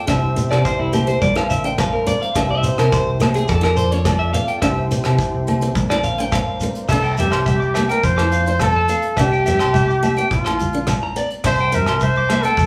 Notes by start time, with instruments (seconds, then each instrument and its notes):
0.06 fingered electric bass C2, steel-string acoustic guitar D4, transistor combo organ E4 G4 C5, clean electric guitar E5, kick, cross-stick, closed hi-hat, muted conga, low agogo, shekere
0.36 steel-string acoustic guitar C4, closed hi-hat, shekere
0.51 fingered electric bass C3, clean electric guitar D5, cross-stick, closed hi-hat, low agogo
0.65 clean electric guitar C5, kick, closed hi-hat, shekere
0.79 fingered electric bass C2, clean electric guitar E4
0.93 steel-string acoustic guitar A#3, clean electric guitar G4, closed hi-hat, low conga, low agogo, shekere
1.07 steel-string acoustic guitar C4, clean electric guitar C5, closed hi-hat, shekere
1.22 fingered electric bass A#1, transistor combo organ D4 A#4, clean electric guitar D5, kick, closed hi-hat, muted conga, high conga, shekere
1.35 steel-string acoustic guitar E4, clean electric guitar F5, cross-stick, low agogo
1.50 clean electric guitar E5, closed hi-hat, muted conga, low conga, shekere
1.64 steel-string acoustic guitar D4, clean electric guitar G5, closed hi-hat, shekere
1.78 steel-string acoustic guitar C4, clean electric guitar F5, kick, cross-stick, closed hi-hat, high conga, low agogo, shekere
1.93 clean electric guitar A#4
2.07 steel-string acoustic guitar C4, clean electric guitar D5, closed hi-hat, muted conga, high conga, shekere
2.22 clean electric guitar F5, closed hi-hat
2.35 fingered electric bass C2, steel-string acoustic guitar D4, transistor combo organ E4 G4, clean electric guitar E5, kick, cross-stick, closed hi-hat, muted conga, low agogo, shekere
2.51 clean electric guitar E5
2.63 steel-string acoustic guitar C4, clean electric guitar C5, closed hi-hat, shekere
2.78 fingered electric bass C3, clean electric guitar A#4, cross-stick, closed hi-hat, low agogo
2.92 clean electric guitar C5, kick, closed hi-hat, high conga, shekere
3.07 fingered electric bass C2
3.20 steel-string acoustic guitar A#3, cross-stick, closed hi-hat, high conga, low agogo, shekere
3.34 steel-string acoustic guitar C4, clean electric guitar G#4, closed hi-hat, shekere
3.47 fingered electric bass F2, transistor combo organ F4 A4 D5, clean electric guitar A4, kick, closed hi-hat, muted conga, shekere
3.61 steel-string acoustic guitar E4, clean electric guitar A#4, cross-stick, low agogo
3.77 clean electric guitar C5, closed hi-hat, muted conga, shekere
3.91 steel-string acoustic guitar D4, clean electric guitar C#5, closed hi-hat, shekere
4.05 steel-string acoustic guitar C4, clean electric guitar D5, kick, cross-stick, closed hi-hat, high conga, low agogo, shekere
4.19 clean electric guitar E5
4.33 steel-string acoustic guitar C4, clean electric guitar F5, closed hi-hat, muted conga, shekere
4.48 clean electric guitar G5, closed hi-hat
4.62 fingered electric bass C2, steel-string acoustic guitar D4, transistor combo organ E4 G4 C5, clean electric guitar E5, kick, cross-stick, closed hi-hat, muted conga, low agogo, shekere
4.91 steel-string acoustic guitar C4, closed hi-hat, shekere
5.04 fingered electric bass C3, cross-stick, closed hi-hat, low agogo
5.18 kick, closed hi-hat, shekere
5.34 fingered electric bass C2
5.47 steel-string acoustic guitar A#3, closed hi-hat, low conga, low agogo
5.61 steel-string acoustic guitar C4, closed hi-hat, shekere
5.75 fingered electric bass A#1, transistor combo organ D4 A#4, kick, closed hi-hat, muted conga, high conga, shekere
5.90 steel-string acoustic guitar E4, clean electric guitar D5, cross-stick, low agogo
6.03 clean electric guitar F5, closed hi-hat, muted conga, low conga, shekere
6.18 steel-string acoustic guitar D4, clean electric guitar G5, closed hi-hat, shekere
6.32 steel-string acoustic guitar C4, clean electric guitar F5, kick, cross-stick, closed hi-hat, high conga, low agogo, shekere
6.60 steel-string acoustic guitar C4, closed hi-hat, muted conga, high conga, shekere
6.75 closed hi-hat, shekere
6.89 fingered electric bass C2, steel-string acoustic guitar D4, trumpet A4, clean electric guitar E5, kick, cross-stick, crash, muted conga, low agogo, shekere
7.03 clean electric guitar G5, shekere
7.17 fingered electric bass G2, steel-string acoustic guitar C4, trumpet G4, clean electric guitar E5, closed hi-hat, shekere
7.31 fingered electric bass C2, clean electric guitar C6, cross-stick, closed hi-hat, low agogo, shekere
7.46 trumpet G4, clean electric guitar E5, kick, closed hi-hat, high conga, shekere
7.60 clean electric guitar D6, shekere
7.74 steel-string acoustic guitar A#3, clean electric guitar E5, cross-stick, closed hi-hat, muted conga, high conga, low agogo, shekere
7.89 steel-string acoustic guitar C4, trumpet A#4, clean electric guitar G5, closed hi-hat, shekere
8.04 fingered electric bass F2, trumpet C5, kick, closed hi-hat, muted conga, shekere
8.17 steel-string acoustic guitar E4, clean electric guitar D6, cross-stick, low agogo
8.32 clean electric guitar F5, closed hi-hat, muted conga, shekere
8.46 steel-string acoustic guitar D4, trumpet C5, closed hi-hat
8.60 steel-string acoustic guitar C4, trumpet A4, kick, cross-stick, closed hi-hat, high conga, low agogo, shekere
8.76 clean electric guitar A5
8.88 steel-string acoustic guitar C4, clean electric guitar F5, closed hi-hat, shekere
9.02 closed hi-hat
9.17 fingered electric bass C2, steel-string acoustic guitar D4, trumpet G4, clean electric guitar E5, kick, cross-stick, closed hi-hat, muted conga, low agogo, shekere
9.32 clean electric guitar G5, shekere
9.46 fingered electric bass G2, steel-string acoustic guitar C4, clean electric guitar E5, closed hi-hat, shekere
9.59 fingered electric bass C2, clean electric guitar C6, cross-stick, closed hi-hat, low agogo, shekere
9.73 clean electric guitar E5, kick, closed hi-hat, high conga, shekere
9.88 clean electric guitar D6, shekere
10.03 steel-string acoustic guitar A#3, clean electric guitar E5, closed hi-hat, muted conga, high conga, low agogo, shekere
10.16 steel-string acoustic guitar C4, clean electric guitar G5, closed hi-hat, shekere
10.31 fingered electric bass A#1, trumpet F4, kick, closed hi-hat, muted conga, low conga, shekere
10.45 steel-string acoustic guitar E4, clean electric guitar C6, cross-stick, low agogo
10.59 closed hi-hat, muted conga, high conga, low conga, shekere
10.73 steel-string acoustic guitar D4, closed hi-hat
10.87 steel-string acoustic guitar C4, kick, cross-stick, closed hi-hat, high conga, low agogo, shekere
11.03 clean electric guitar A#5
11.16 steel-string acoustic guitar C4, clean electric guitar D5, closed hi-hat, shekere
11.30 closed hi-hat
11.44 fingered electric bass C2, steel-string acoustic guitar D4, trumpet C5, clean electric guitar E5, kick, cross-stick, closed hi-hat, muted conga, low agogo, shekere
11.58 clean electric guitar G5, shekere
11.72 fingered electric bass G2, steel-string acoustic guitar C4, trumpet A#4, clean electric guitar E5, closed hi-hat, shekere
11.86 fingered electric bass C2, clean electric guitar C6, cross-stick, closed hi-hat, low agogo, shekere
12.00 trumpet C5, clean electric guitar E5, kick, closed hi-hat, high conga, shekere
12.15 clean electric guitar D6, shekere
12.29 steel-string acoustic guitar A#3, clean electric guitar E5, cross-stick, closed hi-hat, muted conga, high conga, low agogo, shekere
12.43 steel-string acoustic guitar C4, trumpet A4, clean electric guitar G5, closed hi-hat, shekere
12.57 fingered electric bass F2, kick, closed hi-hat, muted conga, shekere